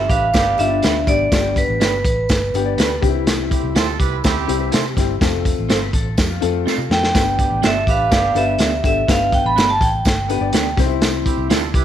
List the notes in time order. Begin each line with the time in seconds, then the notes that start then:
0.09 A1 D4 G4 B4 F5, kick, closed hi-hat, tambourine
0.33 G1 B3 D4 G4 B4, kick, snare, closed hi-hat, tambourine
0.46 A4
0.58 G1 G3 B3 D4 F4 G4 E5, closed hi-hat, tambourine
0.70 D4
0.82 D2 D4 G4 B4, snare, closed hi-hat, tambourine
1.07 G#1 G3 B3 D4 G4 D5, kick, closed hi-hat, tambourine
1.32 G1 G3 B3 D4 F4, kick, snare, closed hi-hat, tambourine
1.39 G4
1.56 B4, kick, closed hi-hat, tambourine
1.68 A1
1.80 G1 D4 G4 B4, snare, closed hi-hat, tambourine
2.05 A1 B4, kick, closed hi-hat, tambourine
2.29 G1, kick, snare, closed hi-hat, tambourine
2.53 G1 G3 B3 D4 G4, closed hi-hat, tambourine
2.66 D5
2.78 D2 D4 G4 B4, snare, closed hi-hat, tambourine
2.90 A4
3.01 C2 G3 C4 D4 G4, kick, closed hi-hat, tambourine
3.08 E4
3.14 E4
3.27 snare, closed hi-hat, tambourine
3.50 C4 E4 G4, kick, closed hi-hat, tambourine
3.63 C2
3.75 D2 D4 E4 F4 G4 A4 C5, snare, closed hi-hat, tambourine
3.99 C2 E4 G4 B4, kick, closed hi-hat, tambourine
4.24 D2 C4 E4 G4 A4, kick, snare, closed hi-hat, tambourine
4.36 G4
4.47 C2 G3 C4 E4 G4, closed hi-hat, tambourine
4.61 B4
4.72 C3 E4 G4 A4 C5, snare, closed hi-hat, tambourine
4.85 G4
4.96 G1 G3 C4 E4 G4, kick, snare, closed hi-hat, tambourine
5.21 F1 A3 C4 F4 A4, kick, snare, closed hi-hat, tambourine
5.45 kick, closed hi-hat, tambourine
5.59 A1
5.69 G1 C4 F4 A4 C5, snare, closed hi-hat, tambourine
5.82 B4
5.93 A1 A4, kick, closed hi-hat, tambourine
6.17 F2 G4, kick, snare, closed hi-hat, tambourine
6.30 F4
6.40 F2 A3 C4 F4 A4, closed hi-hat, tambourine
6.66 C4 F4 A4, muted fingered electric bass stroke, snare, tambourine
6.78 C3
6.90 F2 A3 C4 F4 A4 G5, snare, tambourine
7.03 snare
7.13 G1 B3 D4 G4 B4, kick, snare, closed hi-hat, tambourine
7.39 B3 D4 G4, kick, closed hi-hat, tambourine
7.51 A1
7.62 G1 B3 D4 F4 G4 A4 E5, snare, closed hi-hat, tambourine
7.87 A1 D4 G4 B4 F5, kick, closed hi-hat, tambourine
8.11 G1 B3 D4 G4 B4, kick, snare, closed hi-hat, tambourine
8.35 G1 B3 D4 G4 A4 B4 E5, closed hi-hat, tambourine
8.47 G4
8.58 D2 B3 D4 G4, snare, closed hi-hat, tambourine
8.83 G#1 B3 D4 G4 A4 E5, kick, closed hi-hat, tambourine
9.07 G1 B3 D4 G4 B4 F5, kick, snare, closed hi-hat, tambourine
9.33 G5, kick, closed hi-hat, tambourine
9.44 A1 B5
9.56 G1 B3 D4 G4, snare, closed hi-hat, tambourine
9.70 A5
9.81 A1 G5, kick, closed hi-hat, tambourine
10.05 G1, kick, snare, closed hi-hat, tambourine
10.29 B3 D4 G4 B4, closed hi-hat, tambourine
10.41 G1 D5
10.52 D2 B3 D4 G4 B4, snare, closed hi-hat, tambourine
10.65 A4
10.77 C2 C4 D#4 G4 C5, kick, snare, closed hi-hat, tambourine
10.85 E4
10.89 E4
11.02 snare, closed hi-hat, tambourine
11.26 C4 E4 G4, kick, closed hi-hat, tambourine
11.37 C2
11.50 D2 C4 D4 E4 F4 G4 A4, snare, closed hi-hat, tambourine
11.74 C2 E4 G4 B4, kick, closed hi-hat, tambourine